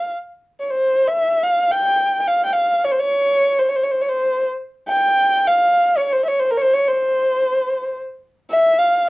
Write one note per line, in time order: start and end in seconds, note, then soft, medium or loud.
0.60 0.71 C#5 soft
0.70 1.09 C5 medium
1.08 1.45 E5 medium
1.43 1.72 F5 medium
1.71 2.20 G5 medium
2.20 2.29 G5 medium
2.28 2.45 F5 medium
2.45 2.54 G5 medium
2.53 2.86 F5 medium
2.85 2.93 C#5 medium
2.91 3.00 C5 medium
2.99 3.60 C#5 medium
3.59 3.70 C5 medium
3.69 3.77 C#5 medium
3.76 3.85 C5 medium
3.83 3.93 C#5 medium
3.91 4.03 C5 medium
4.01 4.10 C#5 medium
4.09 4.46 C5 medium
4.88 5.49 G5 medium
5.47 5.99 F5 medium
5.98 6.14 C#5 medium
6.13 6.23 C5 medium
6.25 6.41 C#5 medium
6.25 6.30 E5 medium
6.39 6.52 C5 medium
6.51 6.59 A#4 medium
6.57 6.63 C#5 medium
6.61 6.75 C5 medium
6.73 6.89 C#5 medium
6.88 7.99 C5 medium
8.50 8.80 E5 medium
8.79 9.09 F5 medium